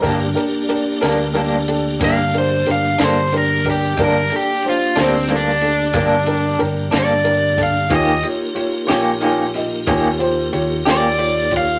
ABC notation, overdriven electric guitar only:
X:1
M:12/8
L:1/8
Q:3/8=61
K:Gm
V:1 name="Overdriven electric guitar"
z6 f c f c B G | B G F C D4 z d2 f | e z8 d2 f |]